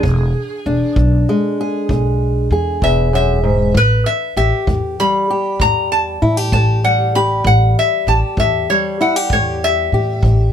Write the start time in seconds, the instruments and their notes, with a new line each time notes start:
Already playing: resonator guitar played with a steel bar G#4
0.03 upright bass E1, steel-string acoustic guitar E2, kick
0.66 upright bass E1, steel-string acoustic guitar D4
0.96 upright bass B1, steel-string acoustic guitar E2, kick
1.29 steel-string acoustic guitar G#3
1.61 steel-string acoustic guitar G#4
1.89 upright bass B1, steel-string acoustic guitar E2, kick
2.51 upright bass E2, steel-string acoustic guitar G#4
2.82 upright bass E1, steel-string acoustic guitar E2, resonator guitar played with a steel bar E5, kick
3.13 steel-string acoustic guitar F#2, resonator guitar played with a steel bar E5
3.44 steel-string acoustic guitar G#2
3.74 upright bass A1, steel-string acoustic guitar A2, resonator guitar played with a steel bar B4, kick
4.06 resonator guitar played with a steel bar E5
4.37 upright bass A1, steel-string acoustic guitar G4, resonator guitar played with a steel bar E5
4.67 upright bass E2, steel-string acoustic guitar A2, kick
5.00 steel-string acoustic guitar G3, resonator guitar played with a steel bar B5
5.30 steel-string acoustic guitar G4
5.59 upright bass E2, steel-string acoustic guitar A2, resonator guitar played with a steel bar A#5, kick
5.92 resonator guitar played with a steel bar A5
6.22 upright bass A2, steel-string acoustic guitar E4
6.37 steel-string acoustic guitar G4
6.52 upright bass A1, steel-string acoustic guitar A2, resonator guitar played with a steel bar A5, kick
6.84 steel-string acoustic guitar G3, resonator guitar played with a steel bar F#5
7.15 steel-string acoustic guitar G4, resonator guitar played with a steel bar B5
7.44 upright bass A1, steel-string acoustic guitar A2, resonator guitar played with a steel bar F#5, kick
7.79 resonator guitar played with a steel bar E5
8.07 upright bass A1, steel-string acoustic guitar G4, resonator guitar played with a steel bar A5
8.37 upright bass E2, steel-string acoustic guitar A2, resonator guitar played with a steel bar E5, kick
8.70 steel-string acoustic guitar G3, resonator guitar played with a steel bar C#5
9.01 steel-string acoustic guitar E4, resonator guitar played with a steel bar F#5
9.16 steel-string acoustic guitar G4
9.30 upright bass E2, steel-string acoustic guitar A2, resonator guitar played with a steel bar C#5, kick
9.64 resonator guitar played with a steel bar E5
9.92 upright bass A2, steel-string acoustic guitar G4
10.23 upright bass A1, steel-string acoustic guitar A2, kick